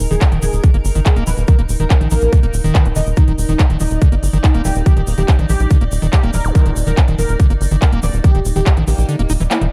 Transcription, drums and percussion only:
0.00 open hi-hat
0.11 closed hi-hat, shaker
0.21 kick, clap, closed hi-hat, shaker
0.32 closed hi-hat
0.42 open hi-hat, shaker
0.53 closed hi-hat, shaker
0.64 kick, closed hi-hat, shaker
0.74 closed hi-hat
0.85 open hi-hat, shaker
0.95 closed hi-hat, shaker
1.06 kick, clap, closed hi-hat, shaker
1.16 closed hi-hat
1.27 open hi-hat, shaker
1.37 closed hi-hat, shaker
1.48 kick, closed hi-hat, shaker
1.59 closed hi-hat
1.69 open hi-hat, shaker
1.80 closed hi-hat, shaker
1.90 kick, clap, closed hi-hat, shaker
2.01 closed hi-hat
2.11 open hi-hat, shaker
2.21 closed hi-hat, shaker
2.33 kick, closed hi-hat, shaker
2.43 closed hi-hat
2.54 open hi-hat, shaker
2.64 closed hi-hat, shaker
2.75 kick, clap, closed hi-hat, shaker
2.85 closed hi-hat
2.96 open hi-hat, shaker
3.06 closed hi-hat, shaker
3.16 kick, closed hi-hat, shaker
3.28 closed hi-hat
3.38 open hi-hat, shaker
3.49 closed hi-hat, shaker
3.59 kick, clap, closed hi-hat, shaker
3.70 closed hi-hat
3.80 open hi-hat, shaker
3.90 closed hi-hat, shaker
4.02 kick, closed hi-hat, shaker
4.12 closed hi-hat
4.23 open hi-hat, shaker
4.33 closed hi-hat, shaker
4.44 kick, clap, closed hi-hat, shaker
4.54 closed hi-hat
4.65 open hi-hat, shaker
4.75 closed hi-hat, shaker
4.86 kick, closed hi-hat, shaker
4.97 closed hi-hat
5.07 open hi-hat, shaker
5.18 closed hi-hat, shaker
5.28 kick, clap, closed hi-hat, shaker
5.39 closed hi-hat
5.49 open hi-hat, shaker
5.60 closed hi-hat, shaker
5.70 kick, closed hi-hat, shaker
5.81 closed hi-hat
5.92 open hi-hat, shaker
6.02 closed hi-hat, shaker
6.13 kick, clap, closed hi-hat, shaker
6.23 closed hi-hat
6.33 open hi-hat, shaker
6.45 closed hi-hat, shaker
6.55 kick, closed hi-hat, shaker
6.66 closed hi-hat
6.76 open hi-hat, shaker
6.87 closed hi-hat, shaker
6.97 kick, clap, closed hi-hat, shaker
7.08 closed hi-hat
7.18 open hi-hat, shaker
7.29 closed hi-hat, shaker
7.40 kick, closed hi-hat, shaker
7.50 closed hi-hat
7.61 open hi-hat, shaker
7.71 closed hi-hat, shaker
7.82 kick, clap, closed hi-hat, shaker
7.92 closed hi-hat
8.03 open hi-hat, shaker
8.14 closed hi-hat, shaker
8.24 kick, closed hi-hat, shaker
8.35 closed hi-hat
8.45 open hi-hat, shaker
8.56 closed hi-hat, shaker
8.66 kick, clap, closed hi-hat, shaker
8.77 closed hi-hat
8.87 open hi-hat, shaker
8.98 closed hi-hat, shaker
9.09 closed hi-hat, shaker
9.19 closed hi-hat
9.29 open hi-hat, shaker
9.40 closed hi-hat, shaker
9.51 clap, closed hi-hat, shaker
9.61 closed hi-hat

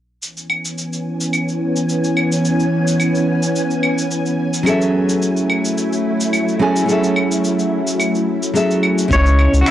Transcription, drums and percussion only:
0.22 shaker
0.37 shaker
0.50 claves
0.65 shaker
0.78 shaker
0.93 shaker
1.20 shaker
1.33 claves, shaker
1.48 shaker
1.76 shaker
1.89 shaker
2.04 shaker
2.17 claves
2.32 shaker
2.45 shaker
2.60 shaker
2.87 shaker
3.00 claves, shaker
3.15 shaker
3.43 shaker
3.56 shaker
3.71 shaker
3.83 claves
3.98 shaker
4.11 shaker
4.26 shaker
4.54 shaker
4.66 claves, shaker
4.81 shaker
5.09 shaker
5.22 shaker
5.37 shaker
5.50 claves
5.65 shaker
5.78 shaker
5.93 shaker
6.20 shaker
6.33 claves, shaker
6.48 shaker
6.76 shaker
6.89 shaker
7.04 shaker
7.16 claves
7.31 shaker
7.44 shaker
7.59 shaker
7.87 shaker
8.00 claves, shaker
8.15 shaker
8.43 shaker
8.56 shaker
8.71 shaker
8.83 claves
8.98 shaker
9.11 kick, shaker
9.26 shaker
9.39 claves
9.54 shaker
9.66 finger snap, shaker

